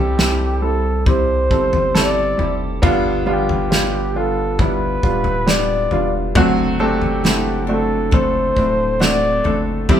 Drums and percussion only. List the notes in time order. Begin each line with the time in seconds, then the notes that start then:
0.19 snare
1.06 kick, floor tom
1.51 kick
1.73 floor tom
1.95 snare
2.39 floor tom
2.83 kick, floor tom
3.49 floor tom
3.72 snare
4.59 kick, floor tom
5.03 kick
5.24 floor tom
5.48 snare
5.91 floor tom
6.35 kick, floor tom
7.02 floor tom
7.25 snare
8.12 kick, floor tom
8.57 kick
9.02 snare
9.45 floor tom
9.89 kick, floor tom